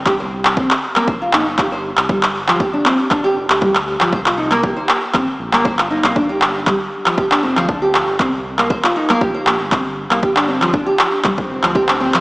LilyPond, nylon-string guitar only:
\new Staff \with { instrumentName = "Nylon-string guitar" } { \time 4/4 \key c \minor \tempo 4 = 118 g'16 c''16 r8 c'16 r8 bes16 c''16 f'16 ees'16 r16 g'16 c''16 r8 | g16 r8 f16 g'16 d'16 c'16 r16 d'16 g'16 r8 g16 r8 f16 | c''16 f'16 ees'16 bes16 g'16 c''16 r8 c'16 r8 bes16 c''16 f'16 ees'16 bes16 | d'16 g'16 r8 g16 r8 f16 g'16 d'16 c'16 f16 d'16 g'16 r8 |
c'16 r8 bes16 c''16 f'16 ees'16 bes16 g'16 c''16 r8 c'16 r8 bes16 | g'16 d'16 c'16 f16 d'16 g'16 r8 g16 r8 f16 g'16 d'16 c'16 f16 | }